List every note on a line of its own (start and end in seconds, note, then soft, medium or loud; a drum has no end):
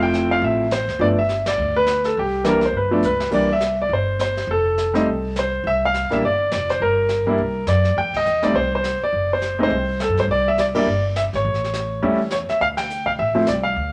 0.00 0.39 F1 medium
0.00 0.64 F3 medium
0.00 0.64 A3 medium
0.00 0.64 C4 medium
0.00 0.65 E4 medium
0.00 0.32 G5 medium
0.14 snare medium
0.14 hi-hat pedal soft
0.31 0.42 F5 medium
0.42 0.85 A1 medium
0.42 0.70 E5 medium
0.42 brush sweep soft
0.71 0.99 C5 medium
0.71 snare medium
0.71 hi-hat pedal medium
0.88 0.98 D2 medium
0.88 snare soft
0.99 1.55 G1 medium
0.99 1.15 F3 soft
0.99 1.16 A3 soft
0.99 1.16 B3 soft
0.99 1.16 D4 medium
0.99 1.06 D5 medium
0.99 brush sweep soft
1.19 1.45 E5 medium
1.29 snare medium
1.29 hi-hat pedal soft
1.46 1.74 D5 medium
1.46 snare medium
1.46 ride medium
1.57 2.13 D2 medium
1.57 brush sweep soft
1.76 2.06 B4 medium
1.86 snare medium
1.86 hi-hat pedal medium
2.04 2.17 A4 medium
2.04 snare soft
2.16 2.72 C2 medium
2.16 2.45 G4 medium
2.16 brush sweep soft
2.44 2.60 E3 medium
2.44 2.60 G3 medium
2.44 2.61 A#3 medium
2.44 2.61 D4 medium
2.44 snare medium
2.44 hi-hat pedal soft
2.48 2.64 A#4 medium
2.61 snare soft
2.66 2.76 C5 medium
2.73 3.00 G1 medium
2.73 brush sweep soft
2.77 3.04 B4 medium
2.91 3.02 F3 medium
2.91 3.02 A3 medium
2.91 3.02 B3 medium
2.91 3.03 D4 medium
3.03 3.30 C#2 medium
3.03 3.34 B4 medium
3.03 hi-hat pedal medium
3.20 snare medium
3.31 3.87 C2 medium
3.31 3.47 E3 soft
3.31 3.47 G3 soft
3.31 3.47 A#3 soft
3.31 3.48 D4 medium
3.31 3.51 D5 medium
3.31 brush sweep soft
3.31 kick medium
3.31 crash medium
3.53 3.78 E5 medium
3.61 snare medium
3.61 hi-hat pedal medium
3.82 3.91 D5 medium
3.89 4.45 G1 medium
3.89 brush sweep soft
3.93 4.19 C5 medium
4.19 4.50 C5 medium
4.19 snare medium
4.19 hi-hat pedal medium
4.37 snare soft
4.47 5.03 F1 medium
4.47 5.33 A4 medium
4.47 brush sweep soft
4.78 snare soft
4.78 hi-hat pedal soft
4.94 5.05 G3 medium
4.94 5.05 A3 medium
4.94 5.05 C4 medium
4.94 5.05 D#4 medium
4.94 snare soft
5.06 5.61 C2 medium
5.06 brush sweep soft
5.36 5.67 C5 medium
5.36 snare medium
5.36 hi-hat pedal soft
5.64 6.07 C2 medium
5.64 5.82 E5 medium
5.64 brush sweep soft
5.85 6.13 F5 medium
5.94 snare soft
5.94 hi-hat pedal soft
6.10 6.21 A#1 medium
6.10 6.21 G3 medium
6.10 6.21 A#3 medium
6.10 6.22 D4 soft
6.10 6.22 E4 medium
6.10 6.24 E5 medium
6.10 snare soft
6.22 6.49 G1 medium
6.22 6.51 D5 medium
6.22 brush sweep soft
6.52 6.79 F1 medium
6.52 6.70 D5 medium
6.52 snare medium
6.52 hi-hat pedal medium
6.69 6.82 C5 medium
6.69 snare soft
6.80 7.23 G1 medium
6.80 7.64 A#4 medium
6.80 brush sweep soft
7.09 snare soft
7.09 hi-hat pedal soft
7.26 7.37 G2 medium
7.26 7.37 G3 medium
7.26 7.37 A#3 medium
7.26 7.38 D4 medium
7.26 7.38 E4 medium
7.38 7.65 C2 medium
7.38 brush sweep medium
7.67 7.94 F#2 medium
7.67 7.95 D5 medium
7.67 snare medium
7.67 hi-hat pedal medium
7.84 snare soft
7.96 8.23 F2 medium
7.96 8.15 G5 medium
7.96 brush sweep soft
8.14 8.45 D#5 medium
8.14 kick medium
8.14 ride medium
8.26 8.53 E2 medium
8.26 hi-hat pedal soft
8.42 8.53 G3 medium
8.42 8.53 A3 medium
8.42 8.54 C4 medium
8.42 8.54 D#4 medium
8.42 8.55 D5 medium
8.42 snare soft
8.53 8.97 C2 medium
8.53 8.71 C5 medium
8.53 brush sweep soft
8.75 9.01 C5 medium
8.84 snare medium
8.84 hi-hat pedal medium
9.02 9.32 D5 medium
9.02 muted upright bass stroke soft
9.13 9.68 F#1 medium
9.13 brush sweep soft
9.33 9.59 C5 medium
9.42 snare medium
9.42 hi-hat pedal soft
9.59 9.69 G#3 medium
9.59 9.69 A3 medium
9.59 9.70 C4 medium
9.59 9.70 D#4 medium
9.63 10.03 C5 medium
9.70 10.06 C2 medium
9.70 brush sweep soft
10.00 10.17 A4 medium
10.00 snare medium
10.00 hi-hat pedal medium
10.09 10.17 F#2 medium
10.17 10.27 G2 medium
10.17 10.24 C5 medium
10.17 snare soft
10.28 10.83 C2 medium
10.28 10.47 D5 medium
10.28 brush sweep soft
10.48 10.59 E5 medium
10.58 10.64 D5 medium
10.58 snare soft
10.58 hi-hat pedal soft
10.75 10.85 G3 medium
10.75 10.85 A#3 medium
10.75 10.86 D4 medium
10.75 10.86 E4 medium
10.75 11.03 D5 medium
10.75 kick medium
10.75 ride medium
10.87 11.29 G1 medium
10.87 brush sweep soft
11.16 11.22 E5 medium
11.16 snare medium
11.16 hi-hat pedal medium
11.33 11.44 G#1 medium
11.33 12.29 C#5 medium
11.33 kick soft
11.33 snare soft
11.44 11.99 A1 medium
11.44 brush sweep soft
11.54 snare soft
11.64 snare soft
11.74 snare medium
11.74 hi-hat pedal medium
12.02 12.45 E2 medium
12.02 12.18 G3 medium
12.02 12.18 A3 medium
12.02 12.18 C#4 medium
12.02 12.18 E4 medium
12.02 brush sweep soft
12.31 12.37 C#5 medium
12.31 snare medium
12.31 hi-hat pedal medium
12.49 12.61 E5 medium
12.49 muted upright bass stroke soft
12.49 snare soft
12.61 13.15 D2 medium
12.61 12.66 F5 medium
12.61 brush sweep soft
12.77 13.07 G5 medium
12.77 snare medium
12.77 ride medium
12.90 hi-hat pedal soft
13.06 13.11 F5 medium
13.06 kick medium
13.17 13.45 A1 medium
13.17 13.45 E5 medium
13.17 brush sweep soft
13.35 13.45 F3 medium
13.35 13.45 A3 medium
13.35 13.46 C4 medium
13.35 13.46 E4 medium
13.47 13.74 C2 medium
13.47 13.53 D5 medium
13.47 snare medium
13.47 hi-hat pedal medium
13.63 13.92 F5 medium
13.76 13.92 D2 medium
13.76 brush sweep soft